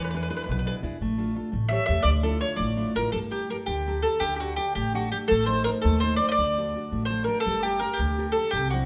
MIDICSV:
0, 0, Header, 1, 4, 480
1, 0, Start_track
1, 0, Key_signature, -1, "minor"
1, 0, Tempo, 353774
1, 1358, Time_signature, 6, 3, 24, 8
1, 3768, Tempo, 359928
1, 4249, Key_signature, -2, "minor"
1, 11873, End_track
2, 0, Start_track
2, 0, Title_t, "Mandolin"
2, 0, Program_c, 0, 25
2, 59, Note_on_c, 0, 71, 49
2, 125, Note_off_c, 0, 71, 0
2, 141, Note_on_c, 0, 71, 60
2, 206, Note_off_c, 0, 71, 0
2, 222, Note_on_c, 0, 71, 39
2, 290, Note_off_c, 0, 71, 0
2, 306, Note_on_c, 0, 71, 48
2, 394, Note_off_c, 0, 71, 0
2, 410, Note_on_c, 0, 71, 46
2, 481, Note_off_c, 0, 71, 0
2, 498, Note_on_c, 0, 71, 49
2, 577, Note_off_c, 0, 71, 0
2, 593, Note_on_c, 0, 71, 40
2, 682, Note_off_c, 0, 71, 0
2, 698, Note_on_c, 0, 71, 48
2, 782, Note_off_c, 0, 71, 0
2, 799, Note_on_c, 0, 71, 45
2, 891, Note_off_c, 0, 71, 0
2, 908, Note_on_c, 0, 71, 59
2, 1009, Note_off_c, 0, 71, 0
2, 2287, Note_on_c, 0, 76, 82
2, 2506, Note_off_c, 0, 76, 0
2, 2522, Note_on_c, 0, 76, 84
2, 2750, Note_on_c, 0, 74, 96
2, 2759, Note_off_c, 0, 76, 0
2, 2826, Note_off_c, 0, 74, 0
2, 3028, Note_on_c, 0, 69, 53
2, 3259, Note_off_c, 0, 69, 0
2, 3266, Note_on_c, 0, 73, 70
2, 3472, Note_off_c, 0, 73, 0
2, 3478, Note_on_c, 0, 74, 55
2, 4004, Note_off_c, 0, 74, 0
2, 4009, Note_on_c, 0, 70, 78
2, 4221, Note_off_c, 0, 70, 0
2, 4226, Note_on_c, 0, 69, 70
2, 4299, Note_off_c, 0, 69, 0
2, 4483, Note_on_c, 0, 67, 48
2, 4712, Note_off_c, 0, 67, 0
2, 4736, Note_on_c, 0, 70, 61
2, 4803, Note_off_c, 0, 70, 0
2, 4948, Note_on_c, 0, 67, 57
2, 5417, Note_off_c, 0, 67, 0
2, 5431, Note_on_c, 0, 69, 67
2, 5664, Note_on_c, 0, 67, 69
2, 5690, Note_off_c, 0, 69, 0
2, 5863, Note_off_c, 0, 67, 0
2, 5879, Note_on_c, 0, 67, 42
2, 5929, Note_off_c, 0, 67, 0
2, 5934, Note_on_c, 0, 66, 54
2, 6145, Note_off_c, 0, 66, 0
2, 6150, Note_on_c, 0, 67, 63
2, 6384, Note_off_c, 0, 67, 0
2, 6402, Note_on_c, 0, 67, 58
2, 6647, Note_off_c, 0, 67, 0
2, 6668, Note_on_c, 0, 66, 54
2, 6883, Note_off_c, 0, 66, 0
2, 6888, Note_on_c, 0, 67, 61
2, 6955, Note_off_c, 0, 67, 0
2, 7104, Note_on_c, 0, 69, 93
2, 7344, Note_off_c, 0, 69, 0
2, 7349, Note_on_c, 0, 72, 62
2, 7583, Note_off_c, 0, 72, 0
2, 7589, Note_on_c, 0, 70, 82
2, 7656, Note_off_c, 0, 70, 0
2, 7820, Note_on_c, 0, 69, 67
2, 8063, Note_off_c, 0, 69, 0
2, 8068, Note_on_c, 0, 72, 73
2, 8278, Note_off_c, 0, 72, 0
2, 8284, Note_on_c, 0, 74, 83
2, 8441, Note_off_c, 0, 74, 0
2, 8447, Note_on_c, 0, 75, 62
2, 8482, Note_off_c, 0, 75, 0
2, 8488, Note_on_c, 0, 74, 85
2, 9449, Note_off_c, 0, 74, 0
2, 9470, Note_on_c, 0, 72, 70
2, 9717, Note_off_c, 0, 72, 0
2, 9722, Note_on_c, 0, 70, 69
2, 9929, Note_off_c, 0, 70, 0
2, 9935, Note_on_c, 0, 69, 84
2, 10208, Note_off_c, 0, 69, 0
2, 10236, Note_on_c, 0, 67, 63
2, 10458, Note_on_c, 0, 70, 69
2, 10467, Note_off_c, 0, 67, 0
2, 10646, Note_on_c, 0, 67, 60
2, 10719, Note_off_c, 0, 70, 0
2, 11138, Note_off_c, 0, 67, 0
2, 11159, Note_on_c, 0, 69, 76
2, 11401, Note_off_c, 0, 69, 0
2, 11409, Note_on_c, 0, 67, 76
2, 11664, Note_off_c, 0, 67, 0
2, 11672, Note_on_c, 0, 66, 53
2, 11873, Note_off_c, 0, 66, 0
2, 11873, End_track
3, 0, Start_track
3, 0, Title_t, "Nylon-string guitar"
3, 0, Program_c, 1, 24
3, 0, Note_on_c, 1, 52, 57
3, 185, Note_on_c, 1, 62, 47
3, 194, Note_on_c, 1, 64, 44
3, 194, Note_on_c, 1, 68, 51
3, 395, Note_off_c, 1, 52, 0
3, 395, Note_off_c, 1, 64, 0
3, 396, Note_off_c, 1, 62, 0
3, 402, Note_off_c, 1, 68, 0
3, 411, Note_on_c, 1, 62, 41
3, 413, Note_on_c, 1, 64, 37
3, 418, Note_on_c, 1, 68, 47
3, 623, Note_on_c, 1, 47, 48
3, 798, Note_off_c, 1, 64, 0
3, 799, Note_off_c, 1, 62, 0
3, 802, Note_off_c, 1, 68, 0
3, 894, Note_on_c, 1, 62, 48
3, 903, Note_on_c, 1, 68, 53
3, 907, Note_on_c, 1, 64, 46
3, 1102, Note_off_c, 1, 47, 0
3, 1106, Note_off_c, 1, 62, 0
3, 1117, Note_off_c, 1, 64, 0
3, 1122, Note_on_c, 1, 62, 40
3, 1123, Note_off_c, 1, 68, 0
3, 1133, Note_on_c, 1, 64, 43
3, 1139, Note_on_c, 1, 68, 53
3, 1309, Note_off_c, 1, 62, 0
3, 1316, Note_off_c, 1, 64, 0
3, 1319, Note_off_c, 1, 68, 0
3, 1380, Note_on_c, 1, 57, 65
3, 1599, Note_on_c, 1, 62, 46
3, 1607, Note_on_c, 1, 69, 53
3, 1616, Note_on_c, 1, 65, 41
3, 1817, Note_off_c, 1, 62, 0
3, 1819, Note_off_c, 1, 65, 0
3, 1832, Note_on_c, 1, 62, 33
3, 1833, Note_off_c, 1, 69, 0
3, 1838, Note_on_c, 1, 65, 38
3, 1842, Note_off_c, 1, 57, 0
3, 1849, Note_on_c, 1, 69, 47
3, 2024, Note_off_c, 1, 62, 0
3, 2025, Note_off_c, 1, 65, 0
3, 2034, Note_off_c, 1, 69, 0
3, 2059, Note_on_c, 1, 57, 48
3, 2316, Note_on_c, 1, 67, 45
3, 2328, Note_on_c, 1, 69, 43
3, 2337, Note_on_c, 1, 73, 51
3, 2519, Note_off_c, 1, 67, 0
3, 2525, Note_off_c, 1, 69, 0
3, 2535, Note_on_c, 1, 67, 43
3, 2541, Note_off_c, 1, 73, 0
3, 2542, Note_off_c, 1, 57, 0
3, 2542, Note_on_c, 1, 69, 34
3, 2558, Note_on_c, 1, 73, 40
3, 2734, Note_off_c, 1, 67, 0
3, 2738, Note_off_c, 1, 69, 0
3, 2748, Note_off_c, 1, 73, 0
3, 2755, Note_on_c, 1, 50, 57
3, 3024, Note_on_c, 1, 62, 44
3, 3034, Note_on_c, 1, 64, 37
3, 3040, Note_on_c, 1, 65, 46
3, 3235, Note_off_c, 1, 62, 0
3, 3238, Note_off_c, 1, 65, 0
3, 3245, Note_off_c, 1, 64, 0
3, 3249, Note_on_c, 1, 62, 34
3, 3252, Note_off_c, 1, 50, 0
3, 3258, Note_on_c, 1, 65, 45
3, 3261, Note_on_c, 1, 64, 34
3, 3474, Note_on_c, 1, 57, 50
3, 3661, Note_off_c, 1, 62, 0
3, 3663, Note_off_c, 1, 65, 0
3, 3667, Note_off_c, 1, 64, 0
3, 3754, Note_on_c, 1, 62, 47
3, 3759, Note_on_c, 1, 64, 37
3, 3767, Note_on_c, 1, 65, 43
3, 3973, Note_off_c, 1, 62, 0
3, 3975, Note_off_c, 1, 57, 0
3, 3980, Note_off_c, 1, 64, 0
3, 3988, Note_off_c, 1, 65, 0
3, 3989, Note_on_c, 1, 62, 40
3, 3996, Note_on_c, 1, 64, 33
3, 4004, Note_on_c, 1, 65, 39
3, 4186, Note_off_c, 1, 62, 0
3, 4191, Note_off_c, 1, 64, 0
3, 4195, Note_off_c, 1, 65, 0
3, 4219, Note_on_c, 1, 55, 43
3, 4477, Note_on_c, 1, 67, 34
3, 4486, Note_on_c, 1, 69, 32
3, 4489, Note_on_c, 1, 70, 38
3, 4706, Note_off_c, 1, 67, 0
3, 4711, Note_off_c, 1, 55, 0
3, 4714, Note_off_c, 1, 69, 0
3, 4715, Note_off_c, 1, 70, 0
3, 4722, Note_on_c, 1, 67, 29
3, 4729, Note_on_c, 1, 69, 30
3, 4734, Note_on_c, 1, 70, 35
3, 4976, Note_on_c, 1, 50, 41
3, 5123, Note_off_c, 1, 67, 0
3, 5127, Note_off_c, 1, 69, 0
3, 5128, Note_off_c, 1, 70, 0
3, 5227, Note_on_c, 1, 67, 37
3, 5233, Note_on_c, 1, 69, 35
3, 5233, Note_on_c, 1, 70, 41
3, 5425, Note_off_c, 1, 67, 0
3, 5430, Note_off_c, 1, 69, 0
3, 5441, Note_on_c, 1, 67, 38
3, 5443, Note_off_c, 1, 70, 0
3, 5446, Note_on_c, 1, 69, 32
3, 5452, Note_off_c, 1, 50, 0
3, 5459, Note_on_c, 1, 70, 41
3, 5638, Note_off_c, 1, 67, 0
3, 5641, Note_off_c, 1, 69, 0
3, 5649, Note_off_c, 1, 70, 0
3, 5683, Note_on_c, 1, 50, 52
3, 5936, Note_on_c, 1, 62, 41
3, 5946, Note_on_c, 1, 67, 34
3, 5948, Note_on_c, 1, 69, 42
3, 6150, Note_off_c, 1, 62, 0
3, 6157, Note_off_c, 1, 67, 0
3, 6158, Note_off_c, 1, 69, 0
3, 6166, Note_off_c, 1, 50, 0
3, 6166, Note_on_c, 1, 62, 35
3, 6173, Note_on_c, 1, 67, 35
3, 6176, Note_on_c, 1, 69, 41
3, 6396, Note_on_c, 1, 57, 49
3, 6565, Note_off_c, 1, 62, 0
3, 6569, Note_off_c, 1, 67, 0
3, 6569, Note_off_c, 1, 69, 0
3, 6652, Note_on_c, 1, 62, 36
3, 6658, Note_on_c, 1, 67, 39
3, 6667, Note_on_c, 1, 69, 49
3, 6862, Note_off_c, 1, 67, 0
3, 6870, Note_off_c, 1, 62, 0
3, 6877, Note_off_c, 1, 69, 0
3, 6878, Note_on_c, 1, 67, 38
3, 6880, Note_off_c, 1, 57, 0
3, 6886, Note_on_c, 1, 62, 35
3, 6893, Note_on_c, 1, 69, 47
3, 7075, Note_off_c, 1, 67, 0
3, 7079, Note_off_c, 1, 62, 0
3, 7084, Note_off_c, 1, 69, 0
3, 7107, Note_on_c, 1, 57, 60
3, 7359, Note_on_c, 1, 63, 42
3, 7372, Note_on_c, 1, 69, 39
3, 7375, Note_on_c, 1, 72, 46
3, 7594, Note_off_c, 1, 57, 0
3, 7598, Note_off_c, 1, 63, 0
3, 7602, Note_off_c, 1, 72, 0
3, 7608, Note_off_c, 1, 69, 0
3, 7614, Note_on_c, 1, 63, 38
3, 7623, Note_on_c, 1, 72, 46
3, 7624, Note_on_c, 1, 69, 33
3, 7851, Note_on_c, 1, 57, 53
3, 8007, Note_off_c, 1, 63, 0
3, 8010, Note_off_c, 1, 72, 0
3, 8013, Note_off_c, 1, 69, 0
3, 8112, Note_on_c, 1, 63, 45
3, 8116, Note_on_c, 1, 69, 38
3, 8121, Note_on_c, 1, 72, 46
3, 8305, Note_off_c, 1, 63, 0
3, 8314, Note_off_c, 1, 69, 0
3, 8316, Note_off_c, 1, 72, 0
3, 8321, Note_on_c, 1, 63, 35
3, 8324, Note_off_c, 1, 57, 0
3, 8329, Note_on_c, 1, 69, 34
3, 8334, Note_on_c, 1, 72, 46
3, 8513, Note_off_c, 1, 63, 0
3, 8518, Note_off_c, 1, 69, 0
3, 8519, Note_off_c, 1, 72, 0
3, 8579, Note_on_c, 1, 50, 62
3, 8834, Note_on_c, 1, 62, 44
3, 8839, Note_on_c, 1, 66, 39
3, 8848, Note_on_c, 1, 69, 42
3, 9045, Note_off_c, 1, 50, 0
3, 9057, Note_off_c, 1, 62, 0
3, 9063, Note_off_c, 1, 66, 0
3, 9067, Note_off_c, 1, 69, 0
3, 9073, Note_on_c, 1, 62, 37
3, 9077, Note_on_c, 1, 66, 33
3, 9086, Note_on_c, 1, 69, 35
3, 9292, Note_on_c, 1, 57, 44
3, 9457, Note_off_c, 1, 62, 0
3, 9461, Note_off_c, 1, 66, 0
3, 9463, Note_off_c, 1, 69, 0
3, 9530, Note_on_c, 1, 62, 41
3, 9538, Note_on_c, 1, 66, 31
3, 9538, Note_on_c, 1, 69, 44
3, 9745, Note_off_c, 1, 62, 0
3, 9747, Note_off_c, 1, 66, 0
3, 9758, Note_off_c, 1, 69, 0
3, 9760, Note_on_c, 1, 62, 39
3, 9765, Note_off_c, 1, 57, 0
3, 9767, Note_on_c, 1, 66, 31
3, 9774, Note_on_c, 1, 69, 39
3, 9954, Note_off_c, 1, 62, 0
3, 9955, Note_off_c, 1, 66, 0
3, 9962, Note_off_c, 1, 69, 0
3, 10004, Note_on_c, 1, 55, 59
3, 10260, Note_on_c, 1, 67, 44
3, 10260, Note_on_c, 1, 69, 34
3, 10273, Note_on_c, 1, 70, 46
3, 10459, Note_off_c, 1, 67, 0
3, 10462, Note_off_c, 1, 69, 0
3, 10471, Note_off_c, 1, 70, 0
3, 10481, Note_off_c, 1, 55, 0
3, 10731, Note_on_c, 1, 50, 48
3, 10975, Note_on_c, 1, 67, 43
3, 10986, Note_on_c, 1, 70, 48
3, 10989, Note_on_c, 1, 69, 43
3, 11197, Note_off_c, 1, 67, 0
3, 11197, Note_off_c, 1, 69, 0
3, 11203, Note_off_c, 1, 50, 0
3, 11212, Note_on_c, 1, 67, 36
3, 11213, Note_off_c, 1, 70, 0
3, 11216, Note_on_c, 1, 69, 34
3, 11229, Note_on_c, 1, 70, 43
3, 11400, Note_off_c, 1, 67, 0
3, 11400, Note_off_c, 1, 69, 0
3, 11410, Note_off_c, 1, 70, 0
3, 11465, Note_on_c, 1, 48, 61
3, 11709, Note_on_c, 1, 60, 47
3, 11717, Note_on_c, 1, 62, 41
3, 11717, Note_on_c, 1, 64, 49
3, 11873, Note_off_c, 1, 48, 0
3, 11873, Note_off_c, 1, 60, 0
3, 11873, Note_off_c, 1, 62, 0
3, 11873, Note_off_c, 1, 64, 0
3, 11873, End_track
4, 0, Start_track
4, 0, Title_t, "Upright bass"
4, 0, Program_c, 2, 32
4, 0, Note_on_c, 2, 40, 66
4, 397, Note_off_c, 2, 40, 0
4, 664, Note_on_c, 2, 35, 81
4, 971, Note_off_c, 2, 35, 0
4, 1128, Note_on_c, 2, 40, 63
4, 1278, Note_off_c, 2, 40, 0
4, 1369, Note_on_c, 2, 33, 66
4, 1833, Note_off_c, 2, 33, 0
4, 2080, Note_on_c, 2, 33, 82
4, 2397, Note_off_c, 2, 33, 0
4, 2564, Note_on_c, 2, 40, 70
4, 2716, Note_off_c, 2, 40, 0
4, 2775, Note_on_c, 2, 38, 68
4, 3254, Note_off_c, 2, 38, 0
4, 3521, Note_on_c, 2, 33, 77
4, 3842, Note_off_c, 2, 33, 0
4, 4015, Note_on_c, 2, 33, 65
4, 4167, Note_off_c, 2, 33, 0
4, 4256, Note_on_c, 2, 31, 65
4, 4726, Note_off_c, 2, 31, 0
4, 4970, Note_on_c, 2, 38, 76
4, 5442, Note_off_c, 2, 38, 0
4, 5679, Note_on_c, 2, 38, 63
4, 6154, Note_off_c, 2, 38, 0
4, 6413, Note_on_c, 2, 33, 77
4, 6882, Note_off_c, 2, 33, 0
4, 7150, Note_on_c, 2, 33, 75
4, 7613, Note_off_c, 2, 33, 0
4, 7862, Note_on_c, 2, 39, 90
4, 8325, Note_off_c, 2, 39, 0
4, 8573, Note_on_c, 2, 38, 72
4, 9038, Note_off_c, 2, 38, 0
4, 9297, Note_on_c, 2, 33, 69
4, 9764, Note_off_c, 2, 33, 0
4, 10018, Note_on_c, 2, 31, 62
4, 10484, Note_off_c, 2, 31, 0
4, 10720, Note_on_c, 2, 38, 83
4, 11191, Note_off_c, 2, 38, 0
4, 11446, Note_on_c, 2, 36, 72
4, 11873, Note_off_c, 2, 36, 0
4, 11873, End_track
0, 0, End_of_file